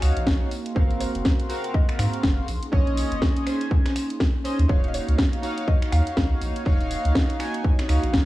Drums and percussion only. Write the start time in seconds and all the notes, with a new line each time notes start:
0.02 finger snap, open hi-hat
0.17 closed hi-hat
0.27 kick, snare
0.51 open hi-hat
0.66 closed hi-hat
0.76 kick
0.91 closed hi-hat
1.01 open hi-hat
1.15 closed hi-hat
1.25 kick, snare
1.40 closed hi-hat
1.50 open hi-hat
1.64 closed hi-hat
1.74 kick
1.89 finger snap, closed hi-hat
1.99 finger snap, open hi-hat
2.13 closed hi-hat
2.23 kick, snare
2.48 open hi-hat
2.63 closed hi-hat
2.73 kick
2.87 closed hi-hat
2.97 open hi-hat
3.12 closed hi-hat
3.22 kick, snare
3.36 closed hi-hat
3.47 finger snap, open hi-hat
3.61 closed hi-hat
3.71 kick
3.85 finger snap, snare, closed hi-hat
3.96 finger snap, open hi-hat
4.10 closed hi-hat
4.20 kick, snare
4.45 open hi-hat
4.59 closed hi-hat
4.69 kick
4.84 closed hi-hat
4.94 open hi-hat
5.09 closed hi-hat
5.18 kick, snare
5.33 closed hi-hat
5.43 open hi-hat
5.58 closed hi-hat
5.68 kick
5.82 finger snap, closed hi-hat
5.92 finger snap, open hi-hat
6.07 closed hi-hat
6.17 kick, snare
6.42 open hi-hat
6.56 closed hi-hat
6.66 kick
6.81 closed hi-hat
6.91 open hi-hat
7.05 closed hi-hat
7.15 kick, snare
7.30 closed hi-hat
7.40 finger snap, open hi-hat
7.54 closed hi-hat
7.64 kick
7.79 finger snap, snare, closed hi-hat
7.89 finger snap, open hi-hat
8.03 closed hi-hat
8.13 kick, snare